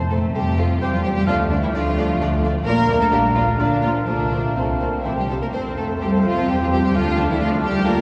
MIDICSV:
0, 0, Header, 1, 10, 480
1, 0, Start_track
1, 0, Key_signature, -1, "major"
1, 0, Tempo, 463320
1, 1322, Time_signature, 3, 2, 24, 8
1, 3712, Tempo, 487409
1, 6112, Tempo, 462250
1, 8178, End_track
2, 0, Start_track
2, 0, Title_t, "Flute section"
2, 0, Program_c, 0, 73
2, 848, Note_on_c, 0, 79, 56
2, 1069, Note_off_c, 0, 79, 0
2, 1311, Note_on_c, 0, 81, 64
2, 1538, Note_off_c, 0, 81, 0
2, 2744, Note_on_c, 0, 82, 75
2, 3667, Note_off_c, 0, 82, 0
2, 3718, Note_on_c, 0, 82, 56
2, 4182, Note_off_c, 0, 82, 0
2, 4193, Note_on_c, 0, 81, 51
2, 4667, Note_off_c, 0, 81, 0
2, 4679, Note_on_c, 0, 81, 47
2, 5147, Note_on_c, 0, 79, 46
2, 5151, Note_off_c, 0, 81, 0
2, 5395, Note_off_c, 0, 79, 0
2, 5640, Note_on_c, 0, 81, 58
2, 6555, Note_off_c, 0, 81, 0
2, 6585, Note_on_c, 0, 79, 55
2, 7072, Note_off_c, 0, 79, 0
2, 7077, Note_on_c, 0, 81, 63
2, 8178, Note_off_c, 0, 81, 0
2, 8178, End_track
3, 0, Start_track
3, 0, Title_t, "Oboe"
3, 0, Program_c, 1, 68
3, 844, Note_on_c, 1, 72, 62
3, 1011, Note_off_c, 1, 72, 0
3, 1314, Note_on_c, 1, 77, 69
3, 1484, Note_off_c, 1, 77, 0
3, 2742, Note_on_c, 1, 77, 76
3, 3666, Note_off_c, 1, 77, 0
3, 3708, Note_on_c, 1, 77, 65
3, 4177, Note_off_c, 1, 77, 0
3, 4187, Note_on_c, 1, 77, 52
3, 4665, Note_off_c, 1, 77, 0
3, 4676, Note_on_c, 1, 77, 50
3, 5159, Note_on_c, 1, 72, 50
3, 5173, Note_off_c, 1, 77, 0
3, 5401, Note_off_c, 1, 72, 0
3, 5641, Note_on_c, 1, 72, 63
3, 7036, Note_off_c, 1, 72, 0
3, 7085, Note_on_c, 1, 77, 67
3, 8178, Note_off_c, 1, 77, 0
3, 8178, End_track
4, 0, Start_track
4, 0, Title_t, "Violin section"
4, 0, Program_c, 2, 48
4, 120, Note_on_c, 2, 72, 45
4, 203, Note_off_c, 2, 72, 0
4, 364, Note_on_c, 2, 72, 51
4, 447, Note_off_c, 2, 72, 0
4, 602, Note_on_c, 2, 72, 46
4, 685, Note_off_c, 2, 72, 0
4, 847, Note_on_c, 2, 72, 57
4, 929, Note_off_c, 2, 72, 0
4, 1087, Note_on_c, 2, 72, 54
4, 1170, Note_off_c, 2, 72, 0
4, 1337, Note_on_c, 2, 74, 65
4, 1420, Note_off_c, 2, 74, 0
4, 1568, Note_on_c, 2, 74, 52
4, 1651, Note_off_c, 2, 74, 0
4, 1814, Note_on_c, 2, 74, 68
4, 1897, Note_off_c, 2, 74, 0
4, 2049, Note_on_c, 2, 74, 60
4, 2132, Note_off_c, 2, 74, 0
4, 2291, Note_on_c, 2, 74, 67
4, 2374, Note_off_c, 2, 74, 0
4, 2531, Note_on_c, 2, 74, 62
4, 2614, Note_off_c, 2, 74, 0
4, 2778, Note_on_c, 2, 74, 68
4, 2861, Note_off_c, 2, 74, 0
4, 3011, Note_on_c, 2, 74, 57
4, 3094, Note_off_c, 2, 74, 0
4, 3244, Note_on_c, 2, 74, 60
4, 3327, Note_off_c, 2, 74, 0
4, 3478, Note_on_c, 2, 74, 53
4, 3561, Note_off_c, 2, 74, 0
4, 3718, Note_on_c, 2, 74, 55
4, 3797, Note_off_c, 2, 74, 0
4, 3949, Note_on_c, 2, 74, 52
4, 4027, Note_off_c, 2, 74, 0
4, 4188, Note_on_c, 2, 72, 54
4, 4267, Note_off_c, 2, 72, 0
4, 4436, Note_on_c, 2, 72, 46
4, 4514, Note_off_c, 2, 72, 0
4, 4685, Note_on_c, 2, 72, 47
4, 4764, Note_off_c, 2, 72, 0
4, 4917, Note_on_c, 2, 72, 42
4, 4996, Note_off_c, 2, 72, 0
4, 5145, Note_on_c, 2, 72, 47
4, 5224, Note_off_c, 2, 72, 0
4, 5387, Note_on_c, 2, 72, 46
4, 5466, Note_off_c, 2, 72, 0
4, 5628, Note_on_c, 2, 72, 65
4, 7029, Note_off_c, 2, 72, 0
4, 7060, Note_on_c, 2, 74, 70
4, 8178, Note_off_c, 2, 74, 0
4, 8178, End_track
5, 0, Start_track
5, 0, Title_t, "Violin section"
5, 0, Program_c, 3, 48
5, 103, Note_on_c, 3, 69, 63
5, 186, Note_off_c, 3, 69, 0
5, 353, Note_on_c, 3, 67, 68
5, 594, Note_off_c, 3, 67, 0
5, 603, Note_on_c, 3, 65, 72
5, 835, Note_on_c, 3, 67, 72
5, 843, Note_off_c, 3, 65, 0
5, 956, Note_off_c, 3, 67, 0
5, 969, Note_on_c, 3, 65, 67
5, 1067, Note_on_c, 3, 67, 90
5, 1084, Note_off_c, 3, 65, 0
5, 1118, Note_off_c, 3, 67, 0
5, 1193, Note_on_c, 3, 67, 79
5, 1309, Note_on_c, 3, 65, 95
5, 1315, Note_off_c, 3, 67, 0
5, 1392, Note_off_c, 3, 65, 0
5, 1551, Note_on_c, 3, 62, 80
5, 1601, Note_off_c, 3, 62, 0
5, 1685, Note_on_c, 3, 64, 78
5, 1732, Note_off_c, 3, 64, 0
5, 1797, Note_on_c, 3, 65, 81
5, 2499, Note_off_c, 3, 65, 0
5, 2736, Note_on_c, 3, 70, 108
5, 3073, Note_off_c, 3, 70, 0
5, 3120, Note_on_c, 3, 69, 77
5, 3165, Note_off_c, 3, 69, 0
5, 3228, Note_on_c, 3, 67, 88
5, 3311, Note_off_c, 3, 67, 0
5, 3473, Note_on_c, 3, 65, 82
5, 3555, Note_off_c, 3, 65, 0
5, 3700, Note_on_c, 3, 62, 70
5, 3935, Note_on_c, 3, 65, 79
5, 3937, Note_off_c, 3, 62, 0
5, 4013, Note_off_c, 3, 65, 0
5, 4176, Note_on_c, 3, 62, 77
5, 4660, Note_off_c, 3, 62, 0
5, 4669, Note_on_c, 3, 60, 59
5, 5152, Note_on_c, 3, 64, 65
5, 5156, Note_off_c, 3, 60, 0
5, 5277, Note_off_c, 3, 64, 0
5, 5279, Note_on_c, 3, 67, 63
5, 5391, Note_on_c, 3, 69, 74
5, 5399, Note_off_c, 3, 67, 0
5, 5441, Note_off_c, 3, 69, 0
5, 5520, Note_on_c, 3, 70, 66
5, 5568, Note_off_c, 3, 70, 0
5, 5630, Note_on_c, 3, 72, 85
5, 5709, Note_off_c, 3, 72, 0
5, 5867, Note_on_c, 3, 69, 73
5, 5946, Note_off_c, 3, 69, 0
5, 6110, Note_on_c, 3, 67, 75
5, 6193, Note_off_c, 3, 67, 0
5, 6363, Note_on_c, 3, 65, 80
5, 6596, Note_off_c, 3, 65, 0
5, 6603, Note_on_c, 3, 67, 75
5, 6720, Note_off_c, 3, 67, 0
5, 6737, Note_on_c, 3, 65, 77
5, 6781, Note_off_c, 3, 65, 0
5, 6834, Note_on_c, 3, 67, 87
5, 6948, Note_off_c, 3, 67, 0
5, 6960, Note_on_c, 3, 67, 76
5, 7076, Note_off_c, 3, 67, 0
5, 7076, Note_on_c, 3, 65, 99
5, 7317, Note_off_c, 3, 65, 0
5, 7318, Note_on_c, 3, 62, 82
5, 7438, Note_off_c, 3, 62, 0
5, 7446, Note_on_c, 3, 64, 81
5, 7554, Note_on_c, 3, 65, 93
5, 7560, Note_off_c, 3, 64, 0
5, 7637, Note_off_c, 3, 65, 0
5, 7796, Note_on_c, 3, 67, 96
5, 8029, Note_off_c, 3, 67, 0
5, 8036, Note_on_c, 3, 70, 94
5, 8178, Note_off_c, 3, 70, 0
5, 8178, End_track
6, 0, Start_track
6, 0, Title_t, "Viola section"
6, 0, Program_c, 4, 48
6, 120, Note_on_c, 4, 60, 47
6, 124, Note_on_c, 4, 69, 45
6, 203, Note_off_c, 4, 60, 0
6, 207, Note_off_c, 4, 69, 0
6, 360, Note_on_c, 4, 69, 49
6, 365, Note_on_c, 4, 60, 50
6, 443, Note_off_c, 4, 69, 0
6, 448, Note_off_c, 4, 60, 0
6, 602, Note_on_c, 4, 60, 47
6, 606, Note_on_c, 4, 69, 47
6, 684, Note_off_c, 4, 60, 0
6, 689, Note_off_c, 4, 69, 0
6, 849, Note_on_c, 4, 60, 54
6, 851, Note_on_c, 4, 67, 57
6, 932, Note_off_c, 4, 60, 0
6, 934, Note_off_c, 4, 67, 0
6, 1094, Note_on_c, 4, 60, 56
6, 1094, Note_on_c, 4, 67, 56
6, 1177, Note_off_c, 4, 60, 0
6, 1177, Note_off_c, 4, 67, 0
6, 1315, Note_on_c, 4, 62, 65
6, 1321, Note_on_c, 4, 57, 67
6, 1398, Note_off_c, 4, 62, 0
6, 1403, Note_off_c, 4, 57, 0
6, 1560, Note_on_c, 4, 57, 58
6, 1560, Note_on_c, 4, 62, 58
6, 1643, Note_off_c, 4, 57, 0
6, 1643, Note_off_c, 4, 62, 0
6, 1808, Note_on_c, 4, 57, 62
6, 1808, Note_on_c, 4, 62, 58
6, 1890, Note_off_c, 4, 57, 0
6, 1891, Note_off_c, 4, 62, 0
6, 2052, Note_on_c, 4, 57, 56
6, 2054, Note_on_c, 4, 62, 61
6, 2135, Note_off_c, 4, 57, 0
6, 2137, Note_off_c, 4, 62, 0
6, 2287, Note_on_c, 4, 62, 65
6, 2291, Note_on_c, 4, 57, 61
6, 2370, Note_off_c, 4, 62, 0
6, 2374, Note_off_c, 4, 57, 0
6, 2517, Note_on_c, 4, 57, 65
6, 2521, Note_on_c, 4, 62, 63
6, 2600, Note_off_c, 4, 57, 0
6, 2604, Note_off_c, 4, 62, 0
6, 2749, Note_on_c, 4, 58, 68
6, 2753, Note_on_c, 4, 65, 67
6, 2832, Note_off_c, 4, 58, 0
6, 2836, Note_off_c, 4, 65, 0
6, 2994, Note_on_c, 4, 65, 59
6, 3000, Note_on_c, 4, 58, 60
6, 3077, Note_off_c, 4, 65, 0
6, 3083, Note_off_c, 4, 58, 0
6, 3234, Note_on_c, 4, 65, 58
6, 3236, Note_on_c, 4, 58, 55
6, 3317, Note_off_c, 4, 65, 0
6, 3318, Note_off_c, 4, 58, 0
6, 3477, Note_on_c, 4, 58, 54
6, 3478, Note_on_c, 4, 65, 57
6, 3560, Note_off_c, 4, 58, 0
6, 3560, Note_off_c, 4, 65, 0
6, 3715, Note_on_c, 4, 65, 52
6, 3719, Note_on_c, 4, 58, 52
6, 3794, Note_off_c, 4, 65, 0
6, 3797, Note_off_c, 4, 58, 0
6, 3951, Note_on_c, 4, 58, 54
6, 3953, Note_on_c, 4, 65, 50
6, 4030, Note_off_c, 4, 58, 0
6, 4032, Note_off_c, 4, 65, 0
6, 4200, Note_on_c, 4, 57, 50
6, 4205, Note_on_c, 4, 65, 49
6, 4278, Note_off_c, 4, 57, 0
6, 4284, Note_off_c, 4, 65, 0
6, 4439, Note_on_c, 4, 65, 47
6, 4440, Note_on_c, 4, 57, 45
6, 4518, Note_off_c, 4, 65, 0
6, 4519, Note_off_c, 4, 57, 0
6, 4686, Note_on_c, 4, 57, 44
6, 4687, Note_on_c, 4, 65, 42
6, 4765, Note_off_c, 4, 57, 0
6, 4766, Note_off_c, 4, 65, 0
6, 4926, Note_on_c, 4, 65, 43
6, 4931, Note_on_c, 4, 57, 45
6, 5004, Note_off_c, 4, 65, 0
6, 5009, Note_off_c, 4, 57, 0
6, 5167, Note_on_c, 4, 60, 45
6, 5168, Note_on_c, 4, 67, 43
6, 5246, Note_off_c, 4, 60, 0
6, 5247, Note_off_c, 4, 67, 0
6, 5410, Note_on_c, 4, 60, 47
6, 5411, Note_on_c, 4, 67, 45
6, 5489, Note_off_c, 4, 60, 0
6, 5490, Note_off_c, 4, 67, 0
6, 5649, Note_on_c, 4, 69, 55
6, 5654, Note_on_c, 4, 60, 59
6, 6560, Note_off_c, 4, 69, 0
6, 6611, Note_on_c, 4, 67, 57
6, 7043, Note_off_c, 4, 60, 0
6, 7052, Note_off_c, 4, 67, 0
6, 7090, Note_on_c, 4, 62, 67
6, 7096, Note_on_c, 4, 57, 61
6, 8178, Note_off_c, 4, 57, 0
6, 8178, Note_off_c, 4, 62, 0
6, 8178, End_track
7, 0, Start_track
7, 0, Title_t, "Clarinet"
7, 0, Program_c, 5, 71
7, 358, Note_on_c, 5, 60, 67
7, 839, Note_on_c, 5, 55, 63
7, 854, Note_off_c, 5, 60, 0
7, 1327, Note_on_c, 5, 57, 85
7, 1342, Note_off_c, 5, 55, 0
7, 2743, Note_off_c, 5, 57, 0
7, 2749, Note_on_c, 5, 58, 76
7, 3224, Note_on_c, 5, 62, 89
7, 3239, Note_off_c, 5, 58, 0
7, 4188, Note_off_c, 5, 62, 0
7, 4198, Note_on_c, 5, 57, 61
7, 5382, Note_off_c, 5, 57, 0
7, 6120, Note_on_c, 5, 60, 76
7, 7077, Note_on_c, 5, 62, 75
7, 7092, Note_off_c, 5, 60, 0
7, 8029, Note_off_c, 5, 62, 0
7, 8035, Note_on_c, 5, 65, 88
7, 8178, Note_off_c, 5, 65, 0
7, 8178, End_track
8, 0, Start_track
8, 0, Title_t, "French horn section"
8, 0, Program_c, 6, 60
8, 0, Note_on_c, 6, 57, 57
8, 0, Note_on_c, 6, 60, 49
8, 798, Note_off_c, 6, 60, 0
8, 801, Note_off_c, 6, 57, 0
8, 835, Note_on_c, 6, 60, 58
8, 840, Note_on_c, 6, 55, 57
8, 1309, Note_off_c, 6, 60, 0
8, 1311, Note_off_c, 6, 55, 0
8, 1317, Note_on_c, 6, 62, 61
8, 1319, Note_on_c, 6, 57, 65
8, 1788, Note_off_c, 6, 62, 0
8, 1789, Note_off_c, 6, 57, 0
8, 1804, Note_on_c, 6, 62, 72
8, 1808, Note_on_c, 6, 57, 70
8, 2734, Note_off_c, 6, 62, 0
8, 2736, Note_off_c, 6, 57, 0
8, 2747, Note_on_c, 6, 58, 75
8, 2752, Note_on_c, 6, 62, 73
8, 3693, Note_off_c, 6, 62, 0
8, 3704, Note_off_c, 6, 58, 0
8, 3714, Note_on_c, 6, 62, 55
8, 3716, Note_on_c, 6, 58, 54
8, 4180, Note_off_c, 6, 62, 0
8, 4181, Note_off_c, 6, 58, 0
8, 4202, Note_on_c, 6, 57, 51
8, 4202, Note_on_c, 6, 65, 54
8, 4671, Note_off_c, 6, 57, 0
8, 4682, Note_on_c, 6, 57, 55
8, 4683, Note_off_c, 6, 65, 0
8, 4905, Note_off_c, 6, 57, 0
8, 4913, Note_on_c, 6, 58, 58
8, 5157, Note_off_c, 6, 58, 0
8, 5160, Note_on_c, 6, 60, 59
8, 5269, Note_off_c, 6, 60, 0
8, 5396, Note_on_c, 6, 62, 60
8, 5505, Note_off_c, 6, 62, 0
8, 5633, Note_on_c, 6, 60, 59
8, 5640, Note_on_c, 6, 57, 52
8, 6555, Note_off_c, 6, 57, 0
8, 6591, Note_on_c, 6, 55, 55
8, 7032, Note_off_c, 6, 60, 0
8, 7074, Note_off_c, 6, 55, 0
8, 7082, Note_on_c, 6, 57, 71
8, 7082, Note_on_c, 6, 62, 65
8, 8178, Note_off_c, 6, 57, 0
8, 8178, Note_off_c, 6, 62, 0
8, 8178, End_track
9, 0, Start_track
9, 0, Title_t, "Cello section"
9, 0, Program_c, 7, 48
9, 115, Note_on_c, 7, 57, 67
9, 353, Note_on_c, 7, 55, 64
9, 355, Note_off_c, 7, 57, 0
9, 599, Note_off_c, 7, 55, 0
9, 605, Note_on_c, 7, 53, 67
9, 839, Note_off_c, 7, 53, 0
9, 839, Note_on_c, 7, 55, 63
9, 961, Note_off_c, 7, 55, 0
9, 962, Note_on_c, 7, 53, 58
9, 1083, Note_off_c, 7, 53, 0
9, 1086, Note_on_c, 7, 55, 68
9, 1133, Note_off_c, 7, 55, 0
9, 1197, Note_on_c, 7, 55, 72
9, 1317, Note_off_c, 7, 55, 0
9, 1322, Note_on_c, 7, 53, 83
9, 1560, Note_on_c, 7, 50, 74
9, 1561, Note_off_c, 7, 53, 0
9, 1676, Note_on_c, 7, 52, 71
9, 1678, Note_off_c, 7, 50, 0
9, 1795, Note_off_c, 7, 52, 0
9, 1799, Note_on_c, 7, 53, 77
9, 2514, Note_off_c, 7, 53, 0
9, 2749, Note_on_c, 7, 58, 85
9, 3080, Note_off_c, 7, 58, 0
9, 3099, Note_on_c, 7, 57, 74
9, 3148, Note_off_c, 7, 57, 0
9, 3227, Note_on_c, 7, 55, 78
9, 3463, Note_off_c, 7, 55, 0
9, 3474, Note_on_c, 7, 53, 69
9, 3557, Note_off_c, 7, 53, 0
9, 3711, Note_on_c, 7, 50, 61
9, 3943, Note_off_c, 7, 50, 0
9, 3945, Note_on_c, 7, 53, 69
9, 4182, Note_off_c, 7, 53, 0
9, 4188, Note_on_c, 7, 50, 66
9, 4666, Note_off_c, 7, 50, 0
9, 4673, Note_on_c, 7, 48, 48
9, 5148, Note_off_c, 7, 48, 0
9, 5158, Note_on_c, 7, 52, 54
9, 5279, Note_off_c, 7, 52, 0
9, 5284, Note_on_c, 7, 55, 46
9, 5331, Note_off_c, 7, 55, 0
9, 5411, Note_on_c, 7, 57, 59
9, 5457, Note_off_c, 7, 57, 0
9, 5527, Note_on_c, 7, 58, 62
9, 5637, Note_on_c, 7, 60, 77
9, 5642, Note_off_c, 7, 58, 0
9, 5876, Note_off_c, 7, 60, 0
9, 5878, Note_on_c, 7, 57, 74
9, 5956, Note_off_c, 7, 57, 0
9, 6114, Note_on_c, 7, 55, 71
9, 6350, Note_on_c, 7, 53, 70
9, 6352, Note_off_c, 7, 55, 0
9, 6594, Note_off_c, 7, 53, 0
9, 6595, Note_on_c, 7, 55, 64
9, 6713, Note_on_c, 7, 53, 60
9, 6716, Note_off_c, 7, 55, 0
9, 6762, Note_off_c, 7, 53, 0
9, 6826, Note_on_c, 7, 55, 71
9, 6934, Note_off_c, 7, 55, 0
9, 6947, Note_on_c, 7, 55, 69
9, 7070, Note_off_c, 7, 55, 0
9, 7071, Note_on_c, 7, 53, 78
9, 7305, Note_on_c, 7, 50, 79
9, 7315, Note_off_c, 7, 53, 0
9, 7431, Note_on_c, 7, 52, 73
9, 7432, Note_off_c, 7, 50, 0
9, 7480, Note_off_c, 7, 52, 0
9, 7545, Note_on_c, 7, 53, 78
9, 7785, Note_off_c, 7, 53, 0
9, 7792, Note_on_c, 7, 55, 82
9, 8027, Note_off_c, 7, 55, 0
9, 8031, Note_on_c, 7, 58, 91
9, 8178, Note_off_c, 7, 58, 0
9, 8178, End_track
10, 0, Start_track
10, 0, Title_t, "Double bass section"
10, 0, Program_c, 8, 48
10, 0, Note_on_c, 8, 41, 64
10, 300, Note_off_c, 8, 41, 0
10, 359, Note_on_c, 8, 41, 63
10, 785, Note_off_c, 8, 41, 0
10, 842, Note_on_c, 8, 40, 66
10, 1265, Note_off_c, 8, 40, 0
10, 1325, Note_on_c, 8, 38, 73
10, 1745, Note_off_c, 8, 38, 0
10, 1799, Note_on_c, 8, 38, 76
10, 2221, Note_off_c, 8, 38, 0
10, 2275, Note_on_c, 8, 38, 89
10, 2694, Note_off_c, 8, 38, 0
10, 2752, Note_on_c, 8, 34, 75
10, 3170, Note_off_c, 8, 34, 0
10, 3225, Note_on_c, 8, 34, 74
10, 3654, Note_off_c, 8, 34, 0
10, 3718, Note_on_c, 8, 34, 66
10, 4135, Note_off_c, 8, 34, 0
10, 4191, Note_on_c, 8, 36, 58
10, 4620, Note_off_c, 8, 36, 0
10, 4684, Note_on_c, 8, 36, 57
10, 5107, Note_off_c, 8, 36, 0
10, 5163, Note_on_c, 8, 36, 62
10, 5587, Note_off_c, 8, 36, 0
10, 5650, Note_on_c, 8, 41, 59
10, 6560, Note_off_c, 8, 41, 0
10, 6597, Note_on_c, 8, 40, 66
10, 7077, Note_on_c, 8, 38, 73
10, 7078, Note_off_c, 8, 40, 0
10, 8178, Note_off_c, 8, 38, 0
10, 8178, End_track
0, 0, End_of_file